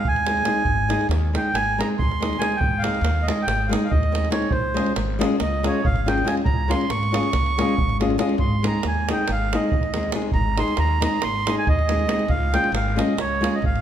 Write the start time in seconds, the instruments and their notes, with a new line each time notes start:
0.05 upright bass D#2, accordion G#5, davul low
0.16 davul high
0.27 nylon-string guitar G#3 C4 D#4 G#4, davul high
0.37 davul high
0.45 nylon-string guitar G#3 C4 D#4 G#4, davul high
0.65 upright bass G#1, davul low
0.89 nylon-string guitar G#3 C4 D#4 G#4, davul high
1.01 davul high
1.09 upright bass D#2, davul high
1.33 nylon-string guitar G#3 C4 D#4 G#4, accordion G5, davul high
1.53 upright bass G#1, accordion G#5, davul high
1.78 nylon-string guitar G#3 C4 D#4 G#4, accordion A#5, davul high
1.98 upright bass D#2, accordion C6, davul low
2.12 davul high
2.20 nylon-string guitar G#3 C4 D#4 G#4, davul high
2.33 davul high
2.39 nylon-string guitar G#3 C4 D#4 G#4, accordion G#5, davul high
2.52 davul high
2.56 upright bass G#1, accordion G5
2.61 davul low
2.79 nylon-string guitar G#3, accordion F5
2.84 nylon-string guitar C4 D#4 G#4, davul high
2.95 davul high
3.01 upright bass D#2, davul high
3.22 accordion D#5
3.28 nylon-string guitar G#3 C4 D#4 G#4, davul high
3.42 accordion G5
3.47 upright bass G#1, davul high
3.68 nylon-string guitar G#3 C4 D#4 G#4, accordion F5
3.73 davul high
3.85 accordion F5
3.90 upright bass D#2, accordion D#5, davul low
4.03 davul high
4.12 nylon-string guitar G#3 C4 D#4 G#4, davul high
4.25 davul high
4.30 nylon-string guitar G#3 C4 D#4 G#4, accordion C#5, davul high
4.42 davul high
4.51 upright bass C#2, accordion C5, davul low
4.74 nylon-string guitar G#3 C#4 F4 G#4, davul high
4.86 davul high
4.96 upright bass G#1, davul high
5.19 nylon-string guitar G#3 C#4 F4 G#4, davul high
5.40 upright bass C#2, accordion D#5, davul high
5.63 nylon-string guitar G#3 C#4 F4 G#4, accordion C#5, davul high
5.85 upright bass G#1, accordion F5, davul low
5.96 davul high
6.06 nylon-string guitar G#3 C#4 F4 G#4, accordion G5, davul high
6.18 davul high
6.24 nylon-string guitar G#3 C#4 F4 G#4, accordion G#5, davul high
6.37 davul high
6.45 upright bass C#2, accordion A#5, davul low
6.68 nylon-string guitar G#3 C#4 F4 G#4, accordion C6, davul high
6.81 davul high
6.90 upright bass G#1, accordion C#6, davul high
7.03 davul high
7.12 nylon-string guitar G#3 C#4 F4 G#4, davul high
7.23 davul high
7.33 upright bass C#2, davul high, davul low
7.46 davul high
7.58 nylon-string guitar G#3 C#4 F4 G#4, davul high
7.69 davul high
7.78 upright bass G#1, davul low
7.89 davul high
8.00 nylon-string guitar G#3 C#4 F4 G#4, davul high
8.10 davul high
8.18 nylon-string guitar G#3 C#4 F4 G#4, davul high
8.29 davul high
8.38 upright bass G#1, accordion C6, davul low
8.63 nylon-string guitar G#3 C4 D#4 G#4, davul high
8.67 accordion A#5
8.83 upright bass D#2, davul high
8.88 accordion G#5
9.09 nylon-string guitar G#3 C4 D#4 G#4, accordion G5, davul high
9.28 upright bass G#1, davul high
9.32 accordion F5
9.53 nylon-string guitar G#3 C4 D#4 G#4, accordion D#5, davul high
9.72 upright bass D#2, davul low
9.83 davul high
9.94 nylon-string guitar G#3 C4 D#4 G#4, davul high
10.03 davul high
10.12 nylon-string guitar G#3 C4 D#4 G#4, davul high
10.22 davul high
10.32 upright bass G#1, accordion A#5, davul low
10.57 nylon-string guitar G#3 C4 D#4 G#4, accordion C6, davul high
10.68 davul high
10.77 upright bass D#2, accordion A#5, davul high
11.00 nylon-string guitar G#3 C4 D#4 G#4, accordion A#5, davul high
11.22 upright bass G#1, accordion C6, davul high
11.47 nylon-string guitar G#3 C4 D#4 G#4, davul high
11.58 accordion G#5
11.67 upright bass D#2, accordion D#5, davul low
11.79 davul high
11.89 nylon-string guitar G#3 C4 D#4 G#4, davul high
11.99 davul high
12.07 nylon-string guitar G#3 C4 D#4 G#4, davul high
12.19 davul high
12.28 upright bass C#2, accordion F5, davul low
12.53 nylon-string guitar G#3 C#4 F4 G#4, accordion G5, davul high
12.64 davul high
12.72 upright bass G#1, accordion F5, davul high
12.96 nylon-string guitar G#3 C#4 F4 G#4, accordion D#5, davul high
13.17 upright bass C#2, accordion C#5, davul high
13.41 nylon-string guitar G#3 C#4 F4 G#4, davul high
13.55 accordion D#5
13.62 upright bass G#1, accordion F5, davul low
13.76 davul high